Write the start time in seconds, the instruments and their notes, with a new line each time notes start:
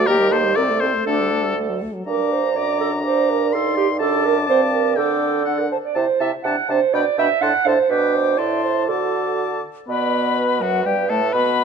0.07 bassoon D#2, french horn A#3, clarinet G4, flute G4, oboe A#4
0.20 french horn G3
0.31 french horn A#3, flute A4, oboe C5
0.44 french horn G3
0.55 bassoon C2, french horn C4, clarinet A4, flute A#4, oboe D5
0.69 french horn A3
0.80 french horn C4, flute A4, oboe C5
0.94 french horn A3
1.05 bassoon D2, french horn A3, flute D4, clarinet A4, oboe A4
1.20 french horn G3
1.31 french horn A3
1.44 french horn G3
1.57 french horn A3
1.69 french horn F#3
1.82 french horn A3
1.94 french horn F#3
2.06 bassoon G2, french horn D4, clarinet A#4, oboe A#5, flute D6
2.32 clarinet C5
2.55 bassoon F#2, french horn D4, clarinet D5, flute D6
2.80 clarinet A4
3.04 bassoon G2, clarinet C5, flute D6
3.30 clarinet A#4
3.51 french horn D#4, clarinet A4, flute C6, oboe C6
3.77 clarinet G4
3.99 bassoon F#2, french horn D4, clarinet A4, oboe A5, flute D6
4.25 clarinet A#4
4.46 bassoon G2, french horn C4, clarinet C5, oboe A5
4.74 clarinet A#4
4.96 bassoon D3, french horn D4, clarinet A4, oboe G5, flute D6
5.45 french horn D4, oboe F#5, flute F#5
5.60 clarinet A#4
5.72 clarinet C5, flute A5
5.85 clarinet D5
5.95 bassoon C3, french horn E4, clarinet C5, flute A5, oboe A5
6.20 bassoon C3, french horn E4, clarinet E5, oboe A5, flute A5
6.44 bassoon C3, french horn D4, clarinet F#5, flute A5, oboe A5
6.68 bassoon C3, french horn D4, clarinet C5, flute A5, oboe A5
6.93 bassoon B2, french horn D4, clarinet D5, oboe G5, flute B5
7.17 bassoon B2, french horn D4, clarinet E5, oboe G5, flute B5
7.41 bassoon A2, french horn D4, clarinet F#5, oboe A5, flute C6
7.65 bassoon A2, french horn D4, clarinet C5, oboe A5, flute C6
7.89 bassoon B2, french horn D4, clarinet B4, oboe G5, flute D6
8.15 clarinet C5
8.38 bassoon A2, french horn E4, clarinet D5, oboe A5, flute C6
8.63 clarinet C5
8.88 bassoon D3, french horn F#4, clarinet A4, oboe A5, flute D6
9.88 bassoon B2, french horn B3, oboe B4, clarinet D5, flute B5
10.37 clarinet B4
10.61 bassoon F#2, french horn F#3, oboe F#4, flute F#5
10.85 bassoon G2, french horn G3, oboe G4, flute G5
11.09 bassoon A2, french horn A3, oboe A4, flute A5
11.32 bassoon B2, french horn B3, oboe B4, flute B5